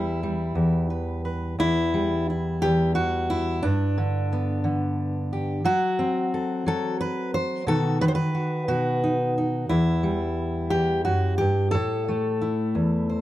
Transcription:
0, 0, Header, 1, 2, 480
1, 0, Start_track
1, 0, Key_signature, 1, "minor"
1, 0, Tempo, 681044
1, 1121, Time_signature, 6, 3, 24, 8
1, 3042, Tempo, 672646
1, 9389, End_track
2, 0, Start_track
2, 0, Title_t, "Steel-string acoustic guitar"
2, 0, Program_c, 0, 25
2, 0, Note_on_c, 0, 40, 67
2, 0, Note_on_c, 0, 55, 64
2, 0, Note_on_c, 0, 64, 92
2, 155, Note_off_c, 0, 55, 0
2, 164, Note_on_c, 0, 55, 44
2, 381, Note_off_c, 0, 40, 0
2, 390, Note_on_c, 0, 40, 59
2, 633, Note_off_c, 0, 64, 0
2, 636, Note_on_c, 0, 71, 39
2, 871, Note_off_c, 0, 71, 0
2, 880, Note_on_c, 0, 71, 39
2, 1092, Note_off_c, 0, 71, 0
2, 1093, Note_off_c, 0, 55, 0
2, 1109, Note_off_c, 0, 40, 0
2, 1118, Note_on_c, 0, 40, 72
2, 1126, Note_on_c, 0, 64, 113
2, 1366, Note_on_c, 0, 55, 62
2, 1605, Note_off_c, 0, 64, 0
2, 1620, Note_on_c, 0, 64, 48
2, 1842, Note_off_c, 0, 40, 0
2, 1845, Note_on_c, 0, 67, 109
2, 1859, Note_on_c, 0, 40, 64
2, 2076, Note_off_c, 0, 67, 0
2, 2078, Note_on_c, 0, 66, 97
2, 2317, Note_off_c, 0, 64, 0
2, 2325, Note_on_c, 0, 64, 93
2, 2538, Note_off_c, 0, 55, 0
2, 2553, Note_off_c, 0, 66, 0
2, 2556, Note_on_c, 0, 62, 93
2, 2563, Note_off_c, 0, 40, 0
2, 2565, Note_off_c, 0, 64, 0
2, 2566, Note_on_c, 0, 43, 75
2, 2803, Note_on_c, 0, 50, 65
2, 3049, Note_on_c, 0, 59, 49
2, 3265, Note_off_c, 0, 50, 0
2, 3274, Note_on_c, 0, 50, 63
2, 3763, Note_on_c, 0, 67, 47
2, 3968, Note_off_c, 0, 50, 0
2, 3973, Note_off_c, 0, 43, 0
2, 3973, Note_off_c, 0, 67, 0
2, 3976, Note_off_c, 0, 59, 0
2, 3990, Note_on_c, 0, 54, 74
2, 3994, Note_off_c, 0, 62, 0
2, 3997, Note_on_c, 0, 66, 113
2, 4236, Note_on_c, 0, 60, 66
2, 4486, Note_on_c, 0, 69, 50
2, 4715, Note_off_c, 0, 54, 0
2, 4718, Note_off_c, 0, 69, 0
2, 4718, Note_on_c, 0, 54, 67
2, 4727, Note_on_c, 0, 69, 98
2, 4956, Note_off_c, 0, 66, 0
2, 4959, Note_off_c, 0, 69, 0
2, 4961, Note_on_c, 0, 71, 100
2, 5198, Note_off_c, 0, 71, 0
2, 5201, Note_on_c, 0, 72, 99
2, 5404, Note_off_c, 0, 60, 0
2, 5406, Note_off_c, 0, 54, 0
2, 5432, Note_on_c, 0, 47, 68
2, 5435, Note_on_c, 0, 51, 49
2, 5438, Note_off_c, 0, 72, 0
2, 5442, Note_on_c, 0, 63, 50
2, 5443, Note_on_c, 0, 69, 106
2, 5446, Note_on_c, 0, 66, 48
2, 5670, Note_off_c, 0, 51, 0
2, 5673, Note_off_c, 0, 47, 0
2, 5678, Note_off_c, 0, 69, 0
2, 5678, Note_on_c, 0, 51, 64
2, 5681, Note_on_c, 0, 71, 103
2, 5726, Note_off_c, 0, 71, 0
2, 5729, Note_on_c, 0, 72, 87
2, 5774, Note_off_c, 0, 72, 0
2, 5777, Note_on_c, 0, 71, 106
2, 5908, Note_off_c, 0, 66, 0
2, 5917, Note_on_c, 0, 66, 48
2, 6148, Note_off_c, 0, 66, 0
2, 6155, Note_on_c, 0, 47, 62
2, 6158, Note_on_c, 0, 66, 91
2, 6400, Note_off_c, 0, 63, 0
2, 6410, Note_on_c, 0, 63, 43
2, 6640, Note_off_c, 0, 71, 0
2, 6645, Note_off_c, 0, 63, 0
2, 6654, Note_on_c, 0, 63, 42
2, 6851, Note_off_c, 0, 47, 0
2, 6853, Note_off_c, 0, 51, 0
2, 6858, Note_off_c, 0, 63, 0
2, 6880, Note_off_c, 0, 66, 0
2, 6880, Note_on_c, 0, 64, 86
2, 6887, Note_on_c, 0, 40, 71
2, 7121, Note_on_c, 0, 55, 63
2, 7600, Note_on_c, 0, 67, 93
2, 7608, Note_off_c, 0, 40, 0
2, 7620, Note_on_c, 0, 40, 59
2, 7842, Note_off_c, 0, 67, 0
2, 7845, Note_on_c, 0, 66, 86
2, 7846, Note_off_c, 0, 64, 0
2, 7854, Note_off_c, 0, 40, 0
2, 7857, Note_on_c, 0, 42, 57
2, 8079, Note_off_c, 0, 66, 0
2, 8082, Note_on_c, 0, 67, 88
2, 8092, Note_off_c, 0, 42, 0
2, 8101, Note_on_c, 0, 43, 60
2, 8298, Note_off_c, 0, 55, 0
2, 8316, Note_off_c, 0, 67, 0
2, 8319, Note_on_c, 0, 69, 110
2, 8334, Note_off_c, 0, 43, 0
2, 8342, Note_on_c, 0, 45, 76
2, 8586, Note_on_c, 0, 57, 68
2, 8821, Note_on_c, 0, 64, 47
2, 9052, Note_off_c, 0, 45, 0
2, 9059, Note_on_c, 0, 40, 64
2, 9306, Note_on_c, 0, 72, 45
2, 9389, Note_off_c, 0, 40, 0
2, 9389, Note_off_c, 0, 57, 0
2, 9389, Note_off_c, 0, 64, 0
2, 9389, Note_off_c, 0, 69, 0
2, 9389, Note_off_c, 0, 72, 0
2, 9389, End_track
0, 0, End_of_file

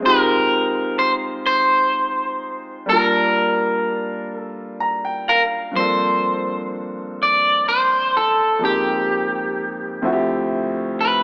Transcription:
0, 0, Header, 1, 3, 480
1, 0, Start_track
1, 0, Tempo, 952381
1, 20, Time_signature, 6, 3, 24, 8
1, 5660, End_track
2, 0, Start_track
2, 0, Title_t, "Clean electric guitar"
2, 0, Program_c, 0, 27
2, 29, Note_on_c, 0, 70, 101
2, 484, Note_off_c, 0, 70, 0
2, 498, Note_on_c, 0, 72, 89
2, 563, Note_off_c, 0, 72, 0
2, 738, Note_on_c, 0, 72, 98
2, 1457, Note_off_c, 0, 72, 0
2, 1459, Note_on_c, 0, 70, 83
2, 2200, Note_off_c, 0, 70, 0
2, 2200, Note_on_c, 0, 69, 83
2, 2639, Note_off_c, 0, 69, 0
2, 2667, Note_on_c, 0, 70, 79
2, 2731, Note_off_c, 0, 70, 0
2, 2905, Note_on_c, 0, 72, 99
2, 3363, Note_off_c, 0, 72, 0
2, 3642, Note_on_c, 0, 74, 92
2, 3872, Note_off_c, 0, 74, 0
2, 3874, Note_on_c, 0, 72, 81
2, 4114, Note_off_c, 0, 72, 0
2, 4117, Note_on_c, 0, 69, 78
2, 4355, Note_off_c, 0, 69, 0
2, 4359, Note_on_c, 0, 67, 71
2, 5049, Note_off_c, 0, 67, 0
2, 5547, Note_on_c, 0, 71, 69
2, 5660, Note_off_c, 0, 71, 0
2, 5660, End_track
3, 0, Start_track
3, 0, Title_t, "Grand piano"
3, 0, Program_c, 1, 0
3, 0, Control_c, 1, 64, 127
3, 0, Note_on_c, 1, 56, 62
3, 12, Note_on_c, 1, 60, 61
3, 25, Note_on_c, 1, 63, 60
3, 27, Control_c, 1, 64, 0
3, 33, Note_on_c, 1, 65, 56
3, 44, Note_on_c, 1, 67, 70
3, 127, Control_c, 1, 64, 127
3, 1430, Note_off_c, 1, 56, 0
3, 1436, Note_off_c, 1, 60, 0
3, 1441, Note_on_c, 1, 55, 60
3, 1442, Note_off_c, 1, 63, 0
3, 1446, Note_off_c, 1, 65, 0
3, 1451, Note_on_c, 1, 58, 59
3, 1452, Note_off_c, 1, 67, 0
3, 1461, Note_on_c, 1, 62, 61
3, 1466, Control_c, 1, 64, 0
3, 1475, Note_on_c, 1, 65, 56
3, 1485, Note_on_c, 1, 81, 71
3, 1545, Control_c, 1, 64, 127
3, 2421, Note_on_c, 1, 82, 66
3, 2532, Note_off_c, 1, 82, 0
3, 2544, Note_on_c, 1, 79, 70
3, 2654, Note_off_c, 1, 79, 0
3, 2662, Note_on_c, 1, 77, 70
3, 2871, Note_off_c, 1, 55, 0
3, 2875, Note_off_c, 1, 58, 0
3, 2881, Note_off_c, 1, 62, 0
3, 2881, Note_on_c, 1, 43, 54
3, 2884, Note_off_c, 1, 77, 0
3, 2887, Note_off_c, 1, 65, 0
3, 2888, Note_on_c, 1, 53, 52
3, 2892, Note_off_c, 1, 81, 0
3, 2897, Note_on_c, 1, 58, 49
3, 2904, Note_on_c, 1, 60, 49
3, 2907, Control_c, 1, 64, 0
3, 2912, Note_on_c, 1, 62, 51
3, 2922, Note_on_c, 1, 69, 60
3, 2991, Control_c, 1, 64, 127
3, 4310, Note_off_c, 1, 43, 0
3, 4314, Note_off_c, 1, 53, 0
3, 4318, Note_off_c, 1, 58, 0
3, 4322, Note_off_c, 1, 60, 0
3, 4326, Note_off_c, 1, 62, 0
3, 4330, Note_on_c, 1, 41, 55
3, 4331, Note_off_c, 1, 69, 0
3, 4333, Note_on_c, 1, 56, 53
3, 4338, Note_on_c, 1, 58, 50
3, 4343, Note_on_c, 1, 60, 52
3, 4346, Note_on_c, 1, 63, 51
3, 4347, Control_c, 1, 64, 0
3, 4351, Note_on_c, 1, 67, 65
3, 4421, Control_c, 1, 64, 127
3, 5051, Note_on_c, 1, 38, 74
3, 5053, Note_on_c, 1, 53, 70
3, 5055, Note_off_c, 1, 41, 0
3, 5056, Note_off_c, 1, 60, 0
3, 5057, Note_off_c, 1, 56, 0
3, 5059, Note_off_c, 1, 58, 0
3, 5059, Note_on_c, 1, 57, 66
3, 5063, Note_off_c, 1, 63, 0
3, 5063, Note_on_c, 1, 60, 68
3, 5065, Note_off_c, 1, 67, 0
3, 5066, Control_c, 1, 64, 0
3, 5066, Note_on_c, 1, 64, 68
3, 5071, Note_on_c, 1, 66, 61
3, 5098, Note_off_c, 1, 66, 0
3, 5104, Note_on_c, 1, 67, 79
3, 5147, Control_c, 1, 64, 127
3, 5660, Note_off_c, 1, 38, 0
3, 5660, Note_off_c, 1, 53, 0
3, 5660, Note_off_c, 1, 57, 0
3, 5660, Note_off_c, 1, 60, 0
3, 5660, Note_off_c, 1, 64, 0
3, 5660, Note_off_c, 1, 67, 0
3, 5660, End_track
0, 0, End_of_file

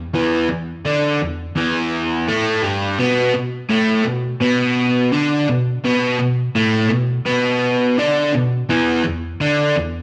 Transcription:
0, 0, Header, 1, 2, 480
1, 0, Start_track
1, 0, Tempo, 713436
1, 90, Time_signature, 4, 2, 24, 8
1, 6743, End_track
2, 0, Start_track
2, 0, Title_t, "Overdriven electric guitar"
2, 0, Program_c, 0, 29
2, 93, Note_on_c, 0, 40, 89
2, 99, Note_on_c, 0, 52, 102
2, 325, Note_off_c, 0, 40, 0
2, 327, Note_off_c, 0, 52, 0
2, 332, Note_on_c, 0, 40, 71
2, 523, Note_off_c, 0, 40, 0
2, 572, Note_on_c, 0, 50, 84
2, 578, Note_on_c, 0, 62, 92
2, 804, Note_off_c, 0, 50, 0
2, 807, Note_off_c, 0, 62, 0
2, 815, Note_on_c, 0, 40, 65
2, 1005, Note_off_c, 0, 40, 0
2, 1047, Note_on_c, 0, 40, 84
2, 1056, Note_on_c, 0, 52, 96
2, 1522, Note_off_c, 0, 40, 0
2, 1526, Note_off_c, 0, 52, 0
2, 1534, Note_on_c, 0, 45, 81
2, 1538, Note_on_c, 0, 57, 102
2, 1765, Note_off_c, 0, 45, 0
2, 1767, Note_off_c, 0, 57, 0
2, 1767, Note_on_c, 0, 43, 85
2, 1773, Note_on_c, 0, 55, 98
2, 2002, Note_off_c, 0, 43, 0
2, 2004, Note_off_c, 0, 55, 0
2, 2010, Note_on_c, 0, 47, 81
2, 2017, Note_on_c, 0, 59, 106
2, 2243, Note_off_c, 0, 47, 0
2, 2247, Note_off_c, 0, 59, 0
2, 2251, Note_on_c, 0, 47, 68
2, 2443, Note_off_c, 0, 47, 0
2, 2487, Note_on_c, 0, 45, 93
2, 2493, Note_on_c, 0, 57, 94
2, 2721, Note_off_c, 0, 45, 0
2, 2725, Note_off_c, 0, 57, 0
2, 2725, Note_on_c, 0, 47, 70
2, 2920, Note_off_c, 0, 47, 0
2, 2965, Note_on_c, 0, 47, 80
2, 2973, Note_on_c, 0, 59, 90
2, 3440, Note_off_c, 0, 47, 0
2, 3445, Note_off_c, 0, 59, 0
2, 3446, Note_on_c, 0, 50, 83
2, 3453, Note_on_c, 0, 62, 97
2, 3681, Note_off_c, 0, 50, 0
2, 3685, Note_off_c, 0, 62, 0
2, 3694, Note_on_c, 0, 47, 75
2, 3884, Note_off_c, 0, 47, 0
2, 3930, Note_on_c, 0, 47, 88
2, 3935, Note_on_c, 0, 59, 103
2, 4161, Note_off_c, 0, 47, 0
2, 4166, Note_off_c, 0, 59, 0
2, 4169, Note_on_c, 0, 47, 69
2, 4362, Note_off_c, 0, 47, 0
2, 4409, Note_on_c, 0, 45, 100
2, 4414, Note_on_c, 0, 57, 101
2, 4643, Note_off_c, 0, 45, 0
2, 4645, Note_off_c, 0, 57, 0
2, 4645, Note_on_c, 0, 47, 68
2, 4840, Note_off_c, 0, 47, 0
2, 4885, Note_on_c, 0, 47, 81
2, 4888, Note_on_c, 0, 59, 95
2, 5361, Note_off_c, 0, 47, 0
2, 5362, Note_off_c, 0, 59, 0
2, 5367, Note_on_c, 0, 50, 96
2, 5375, Note_on_c, 0, 62, 102
2, 5602, Note_off_c, 0, 50, 0
2, 5606, Note_off_c, 0, 62, 0
2, 5610, Note_on_c, 0, 47, 74
2, 5802, Note_off_c, 0, 47, 0
2, 5848, Note_on_c, 0, 40, 92
2, 5854, Note_on_c, 0, 52, 103
2, 6078, Note_off_c, 0, 40, 0
2, 6085, Note_off_c, 0, 52, 0
2, 6087, Note_on_c, 0, 40, 69
2, 6281, Note_off_c, 0, 40, 0
2, 6328, Note_on_c, 0, 50, 89
2, 6335, Note_on_c, 0, 62, 106
2, 6562, Note_off_c, 0, 50, 0
2, 6566, Note_off_c, 0, 62, 0
2, 6568, Note_on_c, 0, 40, 70
2, 6743, Note_off_c, 0, 40, 0
2, 6743, End_track
0, 0, End_of_file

